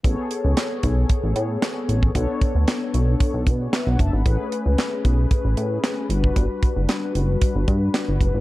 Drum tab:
HH |x-x-x-x-x-x-x-x-|x-x-x-x-x-x-x-x-|x-x-x-x-x-x-x-x-|x-x-x-x-x-x-x-x-|
CP |----x-------x---|----x-------x---|----x-------x---|----x-------x---|
SD |----o-------o---|----o-------o---|----o-------o---|----o-------o---|
BD |o-----o-o------o|o-o-----o-o---o-|o-----o-o------o|o-o-----o-o---o-|